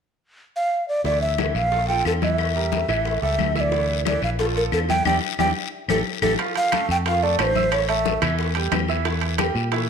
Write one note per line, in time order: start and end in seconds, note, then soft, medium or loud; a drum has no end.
0.56 0.86 F5 medium
0.89 1.04 D5 medium
1.04 1.51 D2 medium
1.04 1.32 E3 medium
1.04 1.32 E4 medium
1.04 1.21 D5 medium
1.04 1.32 E5 medium
1.04 high bongo medium
1.04 high conga soft
1.04 long guiro medium
1.21 1.57 E5 medium
1.21 high bongo soft
1.21 high conga soft
1.38 1.66 E3 medium
1.38 1.66 E4 medium
1.38 1.66 E5 medium
1.38 high bongo medium
1.38 high conga medium
1.38 short guiro medium
1.38 claves medium
1.55 2.01 A#1 medium
1.55 1.88 F5 medium
1.55 high conga soft
1.55 short guiro medium
1.72 1.85 F3 medium
1.72 1.85 F4 medium
1.72 1.86 A4 medium
1.72 high bongo medium
1.72 high conga soft
1.72 long guiro medium
1.88 2.16 F3 medium
1.88 2.16 F4 medium
1.88 2.16 A4 medium
1.88 2.04 G5 medium
1.88 high bongo soft
1.88 high conga soft
2.05 2.83 E2 medium
2.05 2.12 A4 medium
2.05 high bongo soft
2.05 low bongo medium
2.05 high conga soft
2.05 short guiro medium
2.05 claves medium
2.22 2.49 E3 medium
2.22 2.49 E4 medium
2.22 2.50 E5 medium
2.22 3.19 E5 medium
2.22 high bongo soft
2.22 high conga medium
2.22 short guiro medium
2.38 high bongo medium
2.38 long guiro medium
2.38 claves medium
2.55 2.83 G3 medium
2.55 2.83 G4 medium
2.55 2.83 A#4 medium
2.55 high bongo soft
2.55 high conga soft
2.72 high bongo medium
2.72 high conga medium
2.72 short guiro medium
2.88 3.20 A1 medium
2.88 3.16 E3 medium
2.88 3.16 E4 medium
2.88 3.16 E5 medium
2.88 high conga soft
2.88 short guiro medium
2.88 claves medium
3.05 high bongo medium
3.05 high conga soft
3.05 long guiro medium
3.22 3.37 C#2 medium
3.22 3.49 G3 medium
3.22 3.50 G4 medium
3.22 3.50 A4 medium
3.22 3.53 E5 medium
3.22 high bongo soft
3.22 high conga soft
3.38 4.16 D2 medium
3.38 high bongo soft
3.38 low bongo medium
3.38 high conga medium
3.38 short guiro medium
3.38 claves medium
3.55 3.69 E3 medium
3.55 3.69 E4 medium
3.55 3.69 E5 medium
3.55 3.62 E5 medium
3.55 high bongo soft
3.55 high conga medium
3.55 short guiro medium
3.61 4.03 D5 medium
3.72 3.99 E3 medium
3.72 3.99 E4 medium
3.72 4.00 E5 medium
3.72 high bongo medium
3.72 long guiro medium
3.89 high bongo soft
3.89 high conga soft
4.05 4.33 E3 medium
4.05 4.33 E4 medium
4.05 4.22 D5 medium
4.05 4.33 E5 medium
4.05 high bongo medium
4.05 high conga medium
4.05 short guiro medium
4.05 claves medium
4.22 4.69 A#1 medium
4.22 4.30 F5 medium
4.22 high conga soft
4.22 short guiro medium
4.39 4.53 F3 medium
4.39 4.53 F4 medium
4.39 4.46 A4 loud
4.39 4.53 A4 medium
4.39 high bongo medium
4.39 high conga soft
4.39 long guiro medium
4.56 4.83 F3 medium
4.56 4.83 F4 medium
4.56 4.83 A4 medium
4.56 4.63 A#4 medium
4.56 high bongo soft
4.56 high conga soft
4.72 5.03 E2 medium
4.72 4.79 A4 loud
4.72 high bongo soft
4.72 low bongo medium
4.72 short guiro medium
4.72 claves medium
4.89 5.03 E3 medium
4.89 5.03 E4 medium
4.89 5.03 E5 medium
4.89 5.05 G5 loud
4.89 high bongo soft
4.89 high conga medium
4.89 short guiro medium
5.05 5.18 E2 medium
5.05 5.16 D4 medium
5.05 5.16 E4 medium
5.05 5.16 G4 medium
5.05 5.17 G5 medium
5.05 low bongo medium
5.05 high conga medium
5.05 long guiro loud
5.05 claves medium
5.39 5.51 E2 medium
5.39 5.50 D4 medium
5.39 5.50 E4 medium
5.39 5.50 G4 medium
5.39 5.50 G5 medium
5.39 low bongo medium
5.39 high conga medium
5.39 long guiro medium
5.39 claves medium
5.88 6.01 A1 medium
5.88 6.00 E4 medium
5.88 6.00 G4 medium
5.88 6.00 A4 medium
5.88 low bongo medium
5.88 high conga medium
5.88 long guiro medium
5.88 claves medium
6.22 6.34 A1 medium
6.22 6.33 E4 medium
6.22 6.33 G4 medium
6.22 6.33 A4 medium
6.22 low bongo medium
6.22 high conga medium
6.22 long guiro medium
6.22 claves medium
6.39 6.66 F3 medium
6.39 6.66 F4 medium
6.39 6.67 F5 medium
6.39 high bongo medium
6.39 high conga soft
6.39 high timbale medium
6.39 long guiro medium
6.55 6.87 F5 loud
6.55 high bongo soft
6.55 high conga soft
6.55 high timbale medium
6.72 7.00 A3 medium
6.72 7.00 A4 medium
6.72 7.00 A5 medium
6.72 high bongo medium
6.72 high conga medium
6.72 high timbale medium
6.72 low timbale medium
6.72 short guiro medium
6.72 claves medium
6.89 7.35 F2 medium
6.89 6.97 G5 loud
6.89 high conga soft
6.89 short guiro medium
7.06 7.20 F3 medium
7.06 7.20 F4 medium
7.06 7.20 F5 medium
7.06 7.25 F5 loud
7.06 high bongo medium
7.06 high conga soft
7.06 high timbale medium
7.06 long guiro medium
7.22 7.50 A3 medium
7.22 7.50 A4 medium
7.22 7.39 D5 medium
7.22 7.50 A5 medium
7.22 high bongo soft
7.22 high conga soft
7.39 8.16 A1 medium
7.39 7.44 C#5 medium
7.39 high bongo soft
7.39 low bongo medium
7.39 high conga soft
7.39 high timbale medium
7.39 low timbale medium
7.39 short guiro medium
7.39 claves medium
7.43 7.74 C5 medium
7.55 7.83 E4 medium
7.55 7.83 E5 medium
7.55 7.83 E6 medium
7.55 high bongo soft
7.55 high conga medium
7.55 short guiro medium
7.72 7.88 C#5 medium
7.72 high bongo medium
7.72 high conga soft
7.72 high timbale medium
7.72 long guiro medium
7.72 claves medium
7.89 8.16 A3 medium
7.89 8.16 A4 medium
7.89 8.35 E5 medium
7.89 8.16 A5 medium
7.89 high bongo soft
7.89 high conga soft
7.89 high timbale medium
8.05 high bongo medium
8.05 high conga medium
8.05 low timbale medium
8.05 short guiro medium
8.22 8.68 E2 medium
8.22 8.49 E3 medium
8.22 8.50 E4 medium
8.22 8.50 E5 medium
8.22 high conga soft
8.22 low conga medium
8.22 high timbale loud
8.22 short guiro medium
8.22 claves medium
8.38 high bongo medium
8.38 high conga soft
8.38 long guiro medium
8.55 8.83 G3 medium
8.55 8.83 G4 medium
8.55 8.83 G5 medium
8.55 high bongo soft
8.55 high conga soft
8.55 high timbale medium
8.71 9.49 E2 medium
8.71 high bongo soft
8.71 low bongo medium
8.71 high conga medium
8.71 high timbale medium
8.71 low timbale medium
8.71 short guiro medium
8.71 claves medium
8.88 9.02 E3 medium
8.88 9.02 E4 medium
8.88 9.03 E5 medium
8.88 high bongo soft
8.88 short guiro medium
9.05 9.33 E3 medium
9.05 9.33 E4 medium
9.05 9.33 E5 medium
9.05 high bongo medium
9.05 high conga soft
9.05 high timbale medium
9.05 long guiro medium
9.21 high bongo soft
9.21 high conga soft
9.21 high timbale medium
9.38 9.66 G3 medium
9.38 9.66 G4 medium
9.38 9.66 G5 medium
9.38 high bongo medium
9.38 high conga medium
9.38 high timbale medium
9.38 low timbale medium
9.38 short guiro medium
9.38 claves medium
9.55 9.90 A#2 medium
9.55 high conga soft
9.55 short guiro medium
9.72 9.86 E3 medium
9.72 9.86 E4 medium
9.72 9.86 E5 medium
9.72 high bongo medium
9.72 high conga soft
9.72 high timbale medium
9.72 long guiro medium